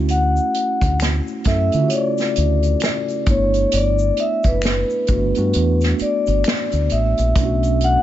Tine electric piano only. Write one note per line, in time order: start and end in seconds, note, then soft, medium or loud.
0.00 1.11 A3 medium
0.00 1.12 C#4 medium
0.00 1.12 E4 medium
0.00 1.12 F#4 medium
1.46 1.67 A3 medium
1.46 1.68 C#4 medium
1.46 1.68 E4 medium
1.46 1.68 A4 medium
1.74 3.18 C#3 medium
1.74 3.17 A3 medium
1.74 3.18 E4 medium
1.74 1.79 F4 medium
1.82 3.21 F#4 medium
3.28 4.75 A3 medium
3.28 4.76 B3 medium
3.28 4.76 D4 medium
3.28 4.76 E4 medium
5.09 5.31 A3 medium
5.09 5.31 B3 medium
5.09 5.31 D4 medium
5.09 5.32 F#4 medium
5.37 6.80 A3 medium
5.37 6.81 B3 medium
5.37 6.81 D4 medium
5.37 6.81 F#4 medium
7.37 8.03 A3 medium
7.37 8.03 C#4 medium
7.37 8.03 D4 medium
7.37 7.45 E4 medium
7.45 8.03 F#4 medium